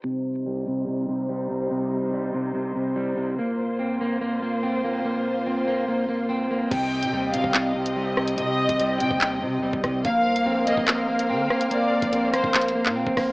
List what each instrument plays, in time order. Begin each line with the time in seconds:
0.04 clean electric guitar C3, string section C3 G3 D#4 C5
0.46 clean electric guitar G3
0.67 clean electric guitar C3
0.87 clean electric guitar C3
1.09 clean electric guitar C3
1.29 clean electric guitar G3
1.50 clean electric guitar C3
1.71 clean electric guitar C3
2.13 clean electric guitar G3
2.34 clean electric guitar C3
2.55 clean electric guitar C3
2.75 clean electric guitar C3
2.96 clean electric guitar G3
3.17 clean electric guitar C3
3.38 string section A#2 A#3 F4 C5, clean electric guitar A#3
3.79 clean electric guitar C4
4.01 clean electric guitar A#3
4.21 clean electric guitar A#3
4.43 clean electric guitar A#3
4.63 clean electric guitar C4
4.84 clean electric guitar A#3
5.04 clean electric guitar A#3
5.46 clean electric guitar C4
5.67 clean electric guitar A#3
5.88 clean electric guitar A#3
6.09 clean electric guitar A#3
6.29 clean electric guitar C4
6.51 clean electric guitar A#3
6.71 808-style bass C2, clean electric guitar C3, string section C3 C4 G4 D#5, violin section G5, kick, closed hi-hat, crash
7.02 808-style bass C3, closed hi-hat
7.13 808-style bass D#2, clean electric guitar G3
7.34 808-style bass C3, clean electric guitar C3, violin section F5, closed hi-hat
7.44 808-style bass C2, kick
7.54 clean electric guitar C3, clap, closed hi-hat
7.76 clean electric guitar C3
7.86 closed hi-hat
7.96 clean electric guitar G3
8.17 clean electric guitar C3, cross-stick
8.28 closed hi-hat
8.38 clean electric guitar C3, 808-style bass C3, violin section D#5, closed hi-hat
8.69 808-style bass C2, kick, closed hi-hat
8.80 808-style bass C2, clean electric guitar G3, closed hi-hat
9.00 808-style bass C3, clean electric guitar C3, violin section G5, closed hi-hat
9.11 808-style bass D#2, kick
9.21 clean electric guitar C3, clap, closed hi-hat
9.42 clean electric guitar C3, 808-style bass C3
9.58 808-style bass D#2
9.63 clean electric guitar G3
9.73 808-style bass C2, kick
9.84 808-style bass C2, clean electric guitar C3, kick, cross-stick, closed hi-hat
10.04 808-style bass A#1, string section A#3 A#4 C5 F5, clean electric guitar A#3, violin section F5, kick, closed hi-hat
10.25 808-style bass C2
10.36 closed hi-hat
10.46 808-style bass A#1, clean electric guitar C4
10.67 clean electric guitar A#3, violin section D#5, closed hi-hat
10.77 808-style bass A#1, kick
10.88 clean electric guitar A#3, clap, closed hi-hat
11.09 clean electric guitar A#3
11.19 closed hi-hat
11.30 808-style bass D3, clean electric guitar C4
11.50 clean electric guitar A#3, cross-stick
11.61 closed hi-hat
11.71 clean electric guitar A#3, violin section D5, closed hi-hat
12.02 808-style bass A#1, kick, closed hi-hat
12.13 808-style bass A#1, clean electric guitar C4, closed hi-hat
12.34 clean electric guitar A#3, violin section C5, cross-stick, closed hi-hat
12.44 808-style bass A#1, kick
12.55 clean electric guitar A#3, clap, closed hi-hat
12.62 closed hi-hat
12.69 closed hi-hat
12.75 clean electric guitar A#3
12.86 808-style bass A#2, clap
12.96 clean electric guitar C4
13.07 808-style bass A#1, kick
13.17 808-style bass A#1, clean electric guitar A#3, kick, cross-stick, open hi-hat